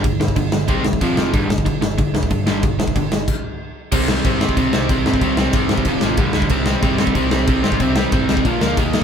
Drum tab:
CC |x---x---x---x---|x---x---x---x---|x---x---x-------|x---x---x---x---|
SD |--o---o---o---o-|--o---o---o---o-|--o---o---------|--o---o---o---o-|
BD |o--oo---o--oo---|o--oo---o--oo---|o--oo---o-------|o---o--oo---o--o|

CC |x---x---x---x---|x---x---x---x---|x---x---x---x---|
SD |--o---o---o---o-|--o---o---o---o-|--o---o---o---o-|
BD |o---o--oo---o--o|o---o--oo---o--o|o---o--oo---o---|